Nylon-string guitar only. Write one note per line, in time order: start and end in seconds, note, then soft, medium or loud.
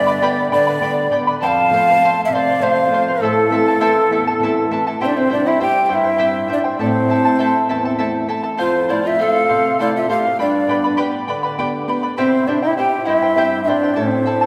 0.00 0.20 G2 medium
0.00 0.20 D3 soft
0.00 0.21 G3 soft
0.00 0.22 B3 medium
0.22 0.51 D3 soft
0.22 0.70 G3 soft
0.22 0.70 B3 medium
0.52 0.80 D3 medium
0.81 1.10 D3 medium
0.81 1.09 G3 soft
0.81 1.11 B3 medium
1.11 1.35 D3 soft
1.11 1.35 G3 soft
1.11 1.36 B3 medium
1.42 2.00 F2 medium
1.71 1.99 F3 medium
1.71 1.99 A3 soft
1.71 2.00 C4 medium
2.00 2.49 F3 soft
2.00 2.49 A3 soft
2.00 2.49 C4 soft
2.29 2.88 C3 medium
2.60 2.86 F3 medium
2.60 2.87 A3 soft
2.60 2.87 C4 medium
2.87 3.13 F3 soft
2.87 3.13 A3 soft
2.87 3.13 C4 medium
3.20 3.79 A2 medium
3.50 3.78 E3 medium
3.50 3.79 A3 soft
3.50 3.79 C4 medium
3.80 4.28 E3 soft
3.80 4.28 A3 soft
3.80 4.28 C4 medium
4.10 4.68 E2 medium
4.40 4.69 E3 medium
4.40 4.70 A3 soft
4.40 4.70 C4 medium
4.70 4.94 E3 soft
4.70 4.95 A3 soft
4.70 4.95 C4 medium
5.00 5.58 C3 medium
5.30 5.59 G3 soft
5.30 5.61 C4 soft
5.30 5.60 E4 medium
5.60 6.08 G3 soft
5.60 6.09 C4 soft
5.60 6.09 E4 medium
5.91 6.48 G2 medium
6.19 6.49 G3 soft
6.19 6.49 C4 soft
6.19 6.50 E4 medium
6.50 6.74 G3 soft
6.50 6.74 C4 soft
6.50 6.74 E4 medium
6.79 7.37 A2 medium
7.08 7.39 A3 medium
7.08 7.38 C4 soft
7.08 7.39 E4 medium
7.39 7.88 A3 soft
7.39 7.87 C4 soft
7.39 7.88 E4 soft
7.71 8.28 E2 medium
8.00 8.29 A3 medium
8.00 8.29 C4 soft
8.00 8.29 E4 medium
8.30 8.53 A3 soft
8.30 8.53 C4 soft
8.30 8.54 E4 soft
8.60 9.18 F2 medium
8.91 9.19 A3 soft
8.91 9.20 C4 soft
8.91 9.20 F4 medium
9.21 9.68 A3 soft
9.21 9.68 C4 soft
9.21 9.68 F4 soft
9.50 10.07 C3 medium
9.81 10.07 A3 medium
9.81 10.07 C4 soft
9.81 10.08 F4 medium
10.08 10.32 A3 soft
10.08 10.32 C4 soft
10.08 10.33 F4 medium
10.39 10.96 G2 medium
10.68 10.96 B3 soft
10.68 10.97 D4 soft
10.68 10.97 G4 medium
10.97 11.45 B3 soft
10.97 11.46 D4 soft
10.97 11.46 G4 medium
11.28 11.86 D3 medium
11.58 11.86 B3 medium
11.58 11.87 D4 soft
11.58 11.86 G4 medium
11.87 12.11 B3 soft
11.87 12.12 D4 soft
11.87 12.11 G4 soft
12.18 12.76 C3 medium
12.47 12.77 C4 soft
12.47 12.78 E4 soft
12.47 12.79 G4 medium
12.79 13.26 C4 soft
12.79 13.26 E4 soft
12.79 13.26 G4 soft
13.08 13.65 G2 medium
13.36 13.66 C4 medium
13.36 13.67 E4 soft
13.36 13.67 G4 medium
13.67 13.91 C4 soft
13.67 13.91 E4 soft
13.67 13.91 G4 medium
13.97 14.46 A2 medium
14.26 14.46 C4 soft
14.26 14.46 E4 soft
14.26 14.46 A4 soft